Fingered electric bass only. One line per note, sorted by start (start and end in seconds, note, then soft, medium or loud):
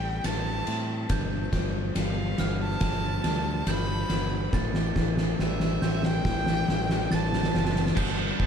0.00 0.19 A1 medium
0.24 0.61 A1 medium
0.68 1.04 A2 medium
1.10 1.47 G1 medium
1.52 1.90 G1 medium
1.96 2.33 G1 medium
2.39 2.76 G1 medium
2.81 3.18 G1 medium
3.24 3.61 D2 medium
3.67 4.04 G1 medium
4.09 4.47 G1 medium
4.53 4.90 A1 medium
4.96 5.33 A1 medium
5.40 5.77 A1 medium
5.83 6.19 A1 medium
6.25 6.62 A1 medium
6.69 7.06 A1 medium
7.13 7.49 A1 medium
7.55 7.92 F#1 medium
7.97 8.31 G1 medium
8.40 8.46 G1 medium